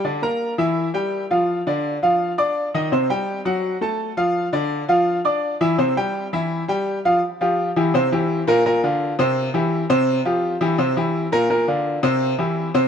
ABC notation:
X:1
M:4/4
L:1/8
Q:1/4=168
K:Cmix
V:1 name="Upright piano"
[D,Dd] [B,Bb]2 [E,Ee]2 [G,Gg]2 [F,Ff]- | [F,Ff] [D,Dd]2 [F,Ff]2 [Ddd']2 [_E,_E_e] | [C,Cc] [G,Gg]2 [_G,_G_g]2 [A,Aa]2 [F,Ff]- | [F,Ff] [D,Dd]2 [F,Ff]2 [Ddd']2 [E,Ee] |
[C,Cc] [G,Gg]2 [E,Ee]2 [G,Gg]2 [F,Ff] | z [F,FG]2 [E,EG] [C,Cc] [E,EG]2 [B,,B,B] | [B,,B,B] [D,DF]2 [C,Cc]2 [E,EG]2 [C,Cc]- | [C,Cc] [F,FG]2 [E,EG] [C,Cc] [E,EG]2 [B,,B,B] |
[B,,B,B] [D,DF]2 [C,Cc]2 [E,EG]2 [C,Cc] |]